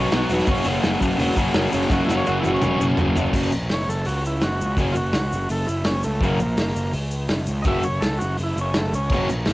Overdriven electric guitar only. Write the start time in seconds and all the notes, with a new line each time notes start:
Already playing: B2 F#3 B3 D#4
0.00 F#4
0.13 B2 F#3 B3 D#4 F#4
0.31 B2 F#3 B3 D#4 F#4
0.48 F#2 C#3 F#3 A#3 C#4 F#4
0.64 F#2 C#3 F#3 A#3 C#4 F#4
0.81 F#2 C#3 F#3 A#3 C#4 F#4
0.99 F#2 C#3 F#3 A#3 C#4 F#4
1.17 F#2 C#3 F#3 A#3 C#4 F#4
1.36 F#2 C#3 F#3 A#3 C#4 F#4
1.53 F#2 C#3 F#3 A#3 C#4 F#4
1.71 F#2 C#3 F#3 A#3 C#4 F#4
1.89 F#2 C#3 F#3 A#3 C#4 F#4
2.07 F#2 C#3 F#3 A#3 C#4 F#4
2.24 F#2 C#3 F#3 A#3 C#4 F#4
2.43 F#2 C#3 F#3 A#3 C#4 F#4
2.61 F#2 C#3 F#3 A#3 C#4 F#4
2.78 F#2 C#3 F#3 A#3 C#4 F#4
2.98 F#2 C#3 F#3 A#3 C#4 F#4
3.16 F#2 C#3 F#3 A#3 C#4 F#4
3.33 F#2 C#3 F#3 A#3 C#4 F#4
4.77 F#2 C#3 F#3 A#3 C#4 F#4
6.21 F#2 C#3 F#3 A#3 C#4 F#4
7.66 F#2 C#3 F#3 A#3 C#4 F#4
9.12 F#2 C#3 F#3 A#3 C#4 F#4